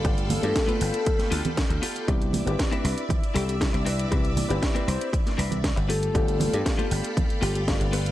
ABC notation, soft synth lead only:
X:1
M:4/4
L:1/16
Q:1/4=118
K:C
V:1 name="Soft synth lead"
z2 A4- A A3 z6 | z8 z2 G G z4 | z6 c2 z6 A2- | A4 z6 G G z4 |]